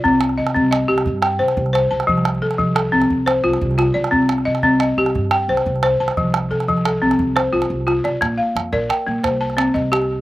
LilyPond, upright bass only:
\new Staff \with { instrumentName = "Upright bass" } { \clef bass \time 12/8 \key c \dorian \tempo 4. = 118 c,4 c8 c,4 c,8 g,4 c,8 c,4 c,16 r16 | c,4 c8 c,4 c,8 c,4 c,8 c,4 c,16 r16 | c,4 c8 c,4 c,8 g,4 c,8 c,4 c,16 r16 | c,4 c8 c,4 c,8 c,4 c,8 c,4 c,16 r16 |
bes,,8 r8 f,8 bes,,8 r8 bes,,8 c,4. c,4. | }